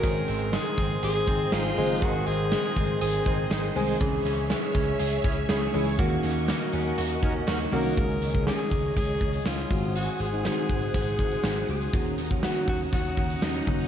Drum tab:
HH |x-x-x-x-x-x-x-o-|x-x-x-x-x-x-x-o-|x-x-x-x-x-x-x-o-|x-x-x-x-x-x-x-o-|
SD |----o-------o---|----o-------o---|----o-------o---|----o-------o---|
BD |o-----o---o-----|o-----o---o-----|o-----o---o-----|o---------o-----|

HH |xxxx-xxxxxxx-xxx|xxxx-xxxxxxx-xxx|xxxx-xxxxxxx-xxx|
SD |----o-------o---|----o-------o---|----o-------o---|
BD |o--o--o-o-o---o-|------o-o-o-----|o--o--o-o-o---o-|